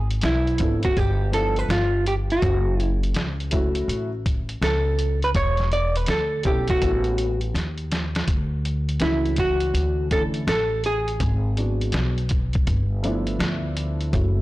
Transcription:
0.00 0.19 G#1 loud
0.11 closed hi-hat medium
0.21 0.58 B1 loud
0.21 0.84 E4 medium
0.21 snare loud
0.21 closed hi-hat loud
0.47 closed hi-hat soft
0.58 0.95 G#1 medium
0.58 0.88 F3 medium
0.58 0.88 B3 medium
0.58 0.89 D4 medium
0.58 0.89 E4 medium
0.58 0.89 A4 medium
0.58 kick medium
0.58 closed hi-hat medium
0.83 0.98 F#4 medium
0.83 kick loud
0.83 closed hi-hat medium
0.97 1.66 G1 loud
0.97 1.33 G4 loud
0.97 kick medium
0.97 closed hi-hat medium
1.32 1.78 F3 medium
1.32 1.79 B3 medium
1.32 1.79 D4 medium
1.32 1.80 E4 medium
1.32 1.59 A4 medium
1.32 1.80 A4 medium
1.32 closed hi-hat medium
1.56 1.70 B4 medium
1.56 closed hi-hat soft
1.69 2.38 G1 medium
1.69 2.04 F4 loud
1.69 snare loud
1.69 closed hi-hat medium
2.06 2.14 G4 medium
2.06 closed hi-hat medium
2.30 2.83 F#4 medium
2.30 closed hi-hat soft
2.42 3.12 F#1 loud
2.42 kick loud
2.42 closed hi-hat loud
2.80 3.00 E4 medium
2.80 closed hi-hat medium
3.03 closed hi-hat medium
3.14 3.85 C#2 loud
3.14 snare loud
3.14 closed hi-hat medium
3.40 closed hi-hat soft
3.51 4.07 F#3 medium
3.51 4.08 A3 medium
3.51 4.08 C#4 medium
3.51 4.08 E4 medium
3.51 4.09 F#4 loud
3.51 kick medium
3.51 closed hi-hat medium
3.75 closed hi-hat medium
3.88 4.58 A1 medium
3.88 closed hi-hat medium
4.26 kick medium
4.26 closed hi-hat medium
4.49 closed hi-hat soft
4.62 5.31 C#2 medium
4.62 5.20 A4 medium
4.62 snare loud
4.62 closed hi-hat medium
4.99 closed hi-hat medium
5.22 5.29 B4 medium
5.22 closed hi-hat soft
5.35 6.04 E1 loud
5.35 5.70 C#5 loud
5.35 kick loud
5.35 closed hi-hat loud
5.57 snare soft
5.57 closed hi-hat soft
5.72 5.97 D5 loud
5.72 closed hi-hat medium
5.96 6.09 B4 medium
5.96 closed hi-hat medium
6.06 6.43 D2 loud
6.06 6.46 A4 medium
6.06 snare loud
6.06 closed hi-hat medium
6.43 6.80 B1 medium
6.43 6.79 G3 medium
6.43 6.79 B3 medium
6.43 6.80 C#4 medium
6.43 6.80 E4 medium
6.43 6.70 G4 medium
6.43 6.81 A4 medium
6.43 kick loud
6.43 closed hi-hat medium
6.68 7.39 F#4 medium
6.68 kick loud
6.68 closed hi-hat medium
6.80 7.51 A1 loud
6.80 7.27 G3 medium
6.80 7.27 B3 medium
6.80 7.28 C#4 medium
6.80 7.28 E4 medium
6.80 7.28 A4 medium
6.80 kick loud
6.80 closed hi-hat loud
7.04 closed hi-hat soft
7.18 closed hi-hat medium
7.41 closed hi-hat soft
7.54 8.24 D#2 loud
7.54 snare medium
7.54 closed hi-hat medium
7.78 closed hi-hat soft
7.92 snare medium
7.92 closed hi-hat medium
8.15 snare medium
8.15 closed hi-hat soft
8.28 8.97 D2 medium
8.28 kick loud
8.28 closed hi-hat medium
8.65 closed hi-hat medium
8.89 closed hi-hat medium
9.00 9.70 C#2 medium
9.00 10.05 E3 medium
9.00 10.06 A3 medium
9.00 10.06 C#4 medium
9.00 10.06 D4 medium
9.00 9.39 E4 medium
9.00 10.07 F#4 medium
9.00 snare loud
9.00 closed hi-hat medium
9.26 closed hi-hat soft
9.36 10.08 F#4 medium
9.36 kick medium
9.36 closed hi-hat medium
9.60 closed hi-hat medium
9.74 10.43 D2 medium
9.74 closed hi-hat loud
10.11 10.40 E3 medium
10.11 10.40 A3 medium
10.11 10.40 C#4 medium
10.11 10.41 D4 medium
10.11 10.41 E4 medium
10.11 10.22 A4 loud
10.11 kick medium
10.11 closed hi-hat medium
10.34 closed hi-hat soft
10.47 11.17 A1 medium
10.47 10.82 A4 loud
10.47 snare loud
10.47 closed hi-hat medium
10.84 12.27 G#4 medium
10.84 closed hi-hat medium
11.08 closed hi-hat soft
11.20 11.90 G#1 loud
11.20 kick loud
11.20 closed hi-hat medium
11.56 12.12 F#3 medium
11.56 12.13 G#3 medium
11.56 12.13 B3 medium
11.56 12.14 D4 medium
11.56 12.14 F#4 medium
11.56 closed hi-hat medium
11.81 closed hi-hat medium
11.92 12.63 B1 loud
11.92 snare loud
11.92 closed hi-hat medium
12.18 closed hi-hat soft
12.29 kick medium
12.29 closed hi-hat medium
12.53 kick loud
12.53 closed hi-hat medium
12.67 13.36 G1 medium
12.67 kick medium
12.67 closed hi-hat medium
13.03 14.08 F3 medium
13.03 14.08 A3 medium
13.03 14.08 B3 medium
13.03 14.09 D4 medium
13.03 14.09 E4 medium
13.03 closed hi-hat medium
13.27 closed hi-hat soft
13.39 14.09 D2 medium
13.39 snare loud
13.39 closed hi-hat medium
13.77 closed hi-hat medium
14.01 closed hi-hat soft
14.12 14.42 F#1 loud
14.12 14.42 F#3 medium
14.12 14.42 A3 medium
14.12 14.42 C#4 medium
14.12 14.42 E4 medium
14.12 14.42 F#4 medium
14.12 kick loud
14.12 closed hi-hat medium

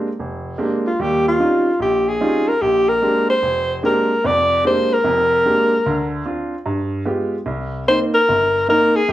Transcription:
0.19 0.54 F1 medium
0.58 0.86 G#3 soft
0.58 0.86 A#3 soft
0.58 0.87 C4 soft
0.58 0.87 D4 soft
0.58 0.87 G4 soft
0.87 1.03 F4 medium
0.99 1.34 D#2 medium
0.99 1.35 G3 medium
0.99 1.27 G4 medium
1.28 1.78 F4 medium
1.39 1.68 G3 soft
1.39 1.68 C4 soft
1.39 1.68 C#4 soft
1.39 1.68 D#4 soft
1.39 1.68 F4 soft
1.80 2.15 A#1 medium
1.80 2.10 G4 medium
2.08 2.50 G#4 medium
2.20 2.49 G3 soft
2.20 2.49 C4 soft
2.20 2.49 C#4 soft
2.20 2.49 D#4 soft
2.20 2.49 F4 medium
2.48 2.63 A#4 medium
2.62 2.97 A#1 medium
2.62 2.90 G4 medium
2.89 3.29 A#4 medium
3.02 3.30 G#3 soft
3.02 3.30 A#3 soft
3.02 3.30 C4 soft
3.02 3.30 D4 soft
3.02 3.30 G4 soft
3.30 3.80 C5 loud
3.42 3.77 F1 medium
3.83 4.11 G#3 soft
3.83 4.11 A#3 soft
3.83 4.11 C4 soft
3.83 4.11 D4 soft
3.83 4.11 G4 medium
3.83 4.28 A#4 medium
4.24 4.59 F1 medium
4.24 4.59 F2 medium
4.24 4.65 D5 loud
4.64 4.92 G#3 soft
4.64 4.92 A#3 soft
4.64 4.92 C4 soft
4.64 4.92 D4 soft
4.64 4.92 G4 soft
4.64 4.95 C5 medium
4.94 6.13 A#4 medium
5.04 5.39 F1 medium
5.04 5.39 F2 medium
5.45 5.73 G#3 soft
5.45 5.73 A#3 soft
5.45 5.73 C4 soft
5.45 5.73 D4 soft
5.45 5.73 G4 medium
5.86 6.21 D2 medium
5.86 6.21 D3 medium
6.25 6.53 C4 soft
6.25 6.53 D4 soft
6.25 6.53 F4 medium
6.66 7.01 G2 medium
7.05 7.34 G#3 soft
7.05 7.34 B3 soft
7.05 7.34 F4 soft
7.05 7.34 G4 medium
7.46 7.81 C2 medium
7.88 8.15 A#3 soft
7.88 8.15 C4 soft
7.88 8.16 D#4 soft
7.88 8.00 C5 medium
8.15 8.65 A#4 loud
8.29 8.63 G1 medium
8.68 8.96 A#3 medium
8.68 8.96 C4 soft
8.68 8.96 D#4 medium
8.68 8.98 A#4 medium
8.96 9.12 G#4 medium
9.08 9.12 F2 medium
9.08 9.12 A3 medium

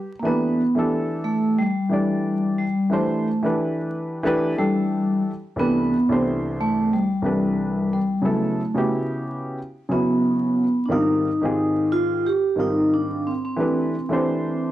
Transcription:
0.00 0.11 G4 medium
0.19 0.60 E3 medium
0.19 0.25 A#3 medium
0.24 0.60 A3 medium
0.24 0.87 B3 loud
0.24 0.61 D4 medium
0.24 0.61 G4 medium
0.24 0.62 B4 medium
0.75 1.57 E3 medium
0.75 1.58 A3 medium
0.75 1.58 D4 medium
0.75 1.58 G4 medium
0.75 1.59 A4 medium
1.24 1.58 A3 loud
1.59 2.57 G3 medium
1.89 2.63 E3 medium
1.89 2.63 A3 medium
1.89 2.64 D4 medium
1.89 2.64 G4 medium
1.89 2.65 D5 medium
2.58 2.92 G3 medium
2.90 3.27 E3 medium
2.90 3.27 A3 medium
2.90 3.54 A3 medium
2.90 3.27 D4 medium
2.90 3.28 G4 medium
2.90 3.28 C5 medium
3.43 4.22 E3 medium
3.43 4.23 A3 medium
3.43 4.24 D4 medium
3.43 4.24 G4 medium
3.43 4.25 B4 medium
4.23 4.51 E3 medium
4.23 4.52 A3 medium
4.23 4.52 D4 medium
4.23 4.53 G4 medium
4.23 4.53 B4 loud
4.56 5.29 E3 medium
4.56 5.21 G3 loud
4.56 5.30 A3 medium
4.56 5.30 D4 medium
4.56 5.31 G4 medium
4.56 5.31 A4 medium
5.56 5.93 C2 medium
5.56 5.93 E3 medium
5.56 5.94 A3 medium
5.56 6.21 B3 loud
5.56 5.94 D4 medium
5.56 5.95 G4 medium
5.56 5.95 B4 medium
6.09 6.91 C2 medium
6.09 6.91 E3 medium
6.09 6.91 A3 medium
6.09 6.92 D4 medium
6.09 6.92 G4 medium
6.09 6.92 C5 medium
6.61 6.90 A3 loud
6.93 7.88 G3 medium
7.22 7.96 C2 medium
7.22 7.96 E3 medium
7.22 7.96 A3 medium
7.22 7.97 D4 medium
7.22 7.97 G4 medium
7.22 7.98 B4 medium
7.93 8.26 G3 medium
8.22 8.59 C#3 medium
8.22 8.60 F#3 medium
8.22 8.60 B3 medium
8.22 8.61 E4 medium
8.22 8.61 A4 medium
8.26 8.88 A3 medium
8.75 9.57 C#3 medium
8.75 9.58 B3 medium
8.75 9.58 E4 medium
8.75 9.57 F#4 medium
8.75 9.59 G4 medium
9.89 10.63 C#3 medium
9.89 10.63 F#3 medium
9.89 10.63 B3 medium
9.89 10.88 B3 medium
9.89 10.64 E4 medium
9.89 10.64 F#4 medium
10.86 11.26 G#2 medium
10.86 11.26 D#3 medium
10.86 10.91 D4 medium
10.90 11.27 G3 medium
10.90 11.27 C4 medium
10.90 11.94 D#4 medium
10.90 11.27 F4 medium
10.90 11.28 A#4 medium
11.42 12.24 G#2 medium
11.42 12.24 D#3 medium
11.42 12.25 C4 medium
11.42 12.25 F4 medium
11.42 12.24 G4 medium
11.42 12.25 G#4 medium
11.92 12.26 F4 loud
12.27 12.60 G4 loud
12.56 13.29 G#2 medium
12.56 13.30 D#3 medium
12.56 13.30 G3 medium
12.56 13.31 C4 medium
12.56 13.31 F4 medium
12.56 13.31 A#4 medium
12.60 12.93 D#4 loud
12.94 13.26 D4 medium
13.27 13.35 C4 medium
13.45 14.72 C4 medium
13.56 13.93 E3 medium
13.56 13.94 A3 medium
13.56 13.94 D4 medium
13.56 13.95 G4 medium
13.56 13.95 B4 medium
14.09 14.72 E3 medium
14.09 14.72 A3 medium
14.09 14.72 D4 medium
14.09 14.72 G4 medium
14.09 14.72 C5 medium

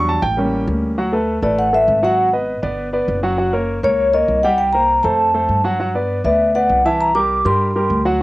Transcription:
0.00 0.17 E2 loud
0.00 0.20 F#3 medium
0.00 0.21 G3 medium
0.00 0.21 D4 medium
0.09 0.23 A5 medium
0.22 0.64 A1 loud
0.22 0.64 G5 loud
0.37 0.94 G3 medium
0.37 0.95 A#3 medium
0.37 0.95 C#4 medium
0.67 1.37 D2 medium
0.98 1.10 F#3 medium
0.98 1.10 F#4 medium
0.98 1.10 F#5 medium
1.13 1.37 A3 medium
1.13 1.38 A4 medium
1.13 1.38 B4 medium
1.42 1.84 A1 medium
1.42 1.67 A3 medium
1.42 1.67 A4 medium
1.42 1.68 B4 medium
1.42 1.58 D5 medium
1.59 1.72 F#5 loud
1.73 1.98 A3 medium
1.73 1.98 A4 medium
1.73 1.98 B4 medium
1.73 2.04 E5 loud
1.88 2.57 G#1 medium
2.03 2.27 F#3 medium
2.03 2.28 F#4 medium
2.03 2.28 F#5 medium
2.03 2.32 F#5 medium
2.33 2.58 B3 medium
2.33 2.58 B4 medium
2.33 2.58 D#5 medium
2.62 3.05 G1 medium
2.62 2.87 B3 medium
2.62 2.88 B4 medium
2.62 2.88 D5 medium
2.93 3.18 B3 medium
2.93 3.18 B4 medium
2.93 3.18 D5 medium
3.08 3.78 F#1 medium
3.23 3.35 F#3 medium
3.23 3.36 F#4 medium
3.23 3.36 F#5 medium
3.38 3.50 F#3 medium
3.38 3.51 F#4 medium
3.38 3.51 F#5 medium
3.53 3.78 A#3 medium
3.53 3.78 A#4 medium
3.53 3.78 C#5 medium
3.83 4.25 C#2 medium
3.83 4.08 A#3 medium
3.83 4.08 A#4 medium
3.83 4.08 C#5 medium
3.83 4.12 C#5 medium
4.13 4.38 A#3 medium
4.13 4.38 A#4 medium
4.13 4.39 C#5 medium
4.13 4.44 D#5 medium
4.28 4.98 C2 medium
4.43 4.69 G3 medium
4.43 4.69 G4 medium
4.43 4.59 F#5 medium
4.43 4.69 G5 medium
4.58 4.72 G5 loud
4.72 4.99 A#3 medium
4.72 4.99 A#4 medium
4.72 4.99 C5 medium
4.72 5.04 A#5 loud
5.03 5.46 F2 medium
5.03 5.29 A3 medium
5.03 5.29 A4 medium
5.03 5.29 C5 medium
5.03 5.60 A5 medium
5.34 5.59 A3 medium
5.34 5.59 A4 medium
5.34 5.59 C5 medium
5.49 6.19 G2 medium
5.64 5.76 F#3 medium
5.64 5.77 F#4 medium
5.64 5.77 F#5 medium
5.79 5.92 F#3 medium
5.79 5.92 F#4 medium
5.79 5.92 F#5 medium
5.94 6.19 B3 medium
5.94 6.19 B4 medium
5.94 6.20 D5 medium
6.24 6.66 D2 medium
6.24 6.50 B3 medium
6.24 6.50 B4 medium
6.24 6.50 D5 medium
6.24 6.53 E5 medium
6.55 6.80 B3 medium
6.55 6.80 B4 medium
6.55 6.80 D5 medium
6.55 6.83 F#5 medium
6.70 7.39 C2 medium
6.85 7.10 E3 medium
6.85 7.10 E4 medium
6.85 7.10 E5 medium
6.85 7.01 A5 medium
7.01 7.14 A#5 medium
7.15 7.40 G3 medium
7.15 7.40 G4 medium
7.15 7.40 A#4 medium
7.15 7.43 D6 loud
7.45 7.87 G2 medium
7.45 7.70 G3 medium
7.45 7.70 G4 medium
7.45 7.70 A#4 medium
7.45 8.02 C6 medium
7.76 8.00 G3 medium
7.76 8.00 G4 medium
7.76 8.00 A#4 medium
7.90 8.23 D2 medium
8.05 8.18 F#3 medium
8.05 8.18 F#4 medium
8.05 8.18 F#5 medium

